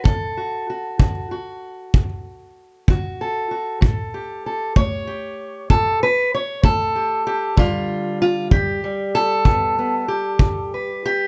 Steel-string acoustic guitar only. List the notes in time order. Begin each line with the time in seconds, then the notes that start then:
0.04 D2 A4
0.37 F#4
0.70 F#4
1.00 D3 F#4
1.31 F#4
1.94 D2
2.89 D3 F#4
3.21 A4
3.51 F#4
3.81 A2 A4
4.14 G4
4.46 A4
4.76 A3 C#5
5.07 G4
5.70 A2 A4
6.03 B4
6.34 C#5
6.63 A3 A4
6.96 G4
7.27 G4
7.56 G2 D3 G3 F4
8.22 F4
8.52 D3 G4
8.84 G3
9.15 A4
9.46 G2 B3
9.79 B3
10.08 G4
10.39 D3
10.74 B4
11.06 G4